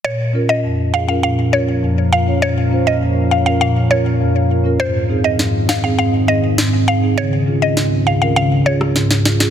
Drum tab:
SD |----------------|----------------|----o-o-----o---|----o------roooo|